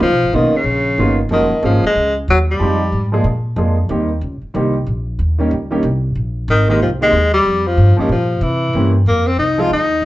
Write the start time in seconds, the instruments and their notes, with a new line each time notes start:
0.00 upright bass C#2, tenor saxophone F3
0.11 upright bass B1
0.22 upright bass G#1
0.33 upright bass B1, grand piano D#3 A#3 B3 C#4 F4, tenor saxophone D#3
0.52 tenor saxophone C#3, muted upright bass stroke
0.64 upright bass A#1
0.98 upright bass G1, grand piano D#3 A#3 B3 C#4 F4
1.29 upright bass F#1, tenor saxophone D#3, grand piano F3 G#3 A#3 C#4 F#4
1.50 muted upright bass stroke
1.62 upright bass G#1, grand piano F3 G#3 A#3 C#4 G#4, tenor saxophone F3
1.83 tenor saxophone G#3, muted upright bass stroke
1.95 upright bass C#2
2.28 upright bass D#2, tenor saxophone F#3
2.51 tenor saxophone G3
2.60 upright bass F2, grand piano F3 G#3 C4 D#4 G4
2.92 upright bass G#2
3.12 grand piano F3 G#3 A#3 D4 G#4
3.24 upright bass A#2
3.56 upright bass F2, grand piano F3 G#3 A#3 D4 G#4
3.89 upright bass D#2, grand piano D#3 G3 A#3 C4 G4
4.21 upright bass C#2
4.42 muted upright bass stroke
4.54 upright bass C2, grand piano D#3 G3 A#3 C4 G4
4.86 upright bass A#1
5.19 upright bass D#2
5.39 grand piano D#3 G3 A#3 C#4 G4
5.51 upright bass C#2
5.71 grand piano D#3 G3 A#3 C#4 G4
5.83 upright bass C2
6.15 upright bass A#1
6.48 upright bass G#1, tenor saxophone D#3
6.68 grand piano D#3 G#3 A#3 C4 G4, tenor saxophone D#3
6.80 upright bass C2, tenor saxophone F3
7.01 grand piano D#3 G#3 A#3 C4 G4, tenor saxophone G#3
7.12 upright bass D#2
7.34 tenor saxophone G3
7.46 upright bass F2
7.67 tenor saxophone F3
7.77 upright bass G2
7.97 tenor saxophone D#3, grand piano F3 G3 A#3 C#4 G4, muted upright bass stroke
8.09 upright bass A#2, tenor saxophone F3
8.41 upright bass C3, tenor saxophone E3
8.73 upright bass G2, grand piano E3 A#3 C4 C#4 G4
9.06 upright bass F2, tenor saxophone A#3
9.27 tenor saxophone C4
9.37 upright bass C2, tenor saxophone D#4
9.58 grand piano F3 G#3 C4 D#4 G#4, tenor saxophone F4
9.70 upright bass D#2, tenor saxophone D#4
10.02 upright bass G#1